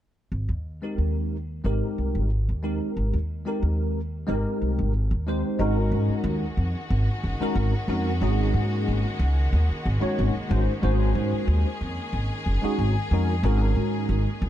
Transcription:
0.32 G#1
0.49 D#2
0.82 G#3 C4 D#4 G4 A#4
0.98 D#2
1.64 G#1 G#3 C4 D#4 G4 A#4
1.98 C2
2.15 G#1
2.49 D#2
2.63 G#3 C4 D#4 G4 A#4
2.97 G#1
3.13 D#2
3.45 G#3 C4 D#4 G4 A#4
3.63 D#2
4.27 G#1 G#3 C4 D#4 G4 A#4
4.62 C2
4.79 G#1
5.11 D#2
5.27 G#3 C4 D#4 G4 C5
5.59 G#1 D#3 G#3 A#3 C#4 D#4 F#4 A#4
5.92 G#2
6.08 muted upright bass stroke
6.24 D#2
6.57 F2
6.90 G#1
7.24 F#1
7.40 G#3 C#4 D#4 F#4 A#4, muted upright bass stroke
7.55 G#1
7.87 F2 G#3 C#4 D#4 F#4 A#4
8.21 G#1 G#3 C#4 D#4 F#4 G#4
8.54 G#2
8.88 G#1
9.19 C#2
9.53 D#2
9.69 muted upright bass stroke
9.86 G#1
10.00 G#3 C#4 D#4 F#4 C#5, muted upright bass stroke
10.19 G#1
10.36 muted upright bass stroke
10.49 G#1 G#3 C#4 D#4 F#4 C5
10.82 G#1 G#3 C#4 D#4 F#4 G#4 C5
11.15 G#2
11.32 muted upright bass stroke
11.48 D#2
11.81 F2
12.13 G#1
12.46 F#1
12.62 G#3 C#4 D#4 F#4 G#4, muted upright bass stroke
12.79 G#1
13.11 F2 G#3 C#4 D#4 F#4 A#4
13.43 G#1 G#3 C#4 D#4 F#4 A#4
13.76 G#2
14.09 G#1
14.42 C#2

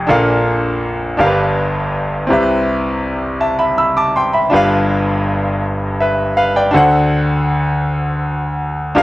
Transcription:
0.07 A#1 A#2 D4 A4 A#4 F5
1.17 G1 G2 D4 G4 A#4 F5
1.26 B4
2.27 C2 C3 C4 E4 G4
2.32 B4 E5
3.41 E5 A5
3.59 E5 B5
3.78 B5 E6
3.97 A5 D6
4.16 G5 C6
4.33 E5 B5
4.50 G1 G2 D4 F4 G4
4.54 B4 F5
6.00 B4 E5
6.37 B4 F5
6.56 D5 G5
6.71 D2 D3 D4 F#4 A4
6.76 C5 F#5
8.95 G1 G2 D4 F4 G4 A#4 F5

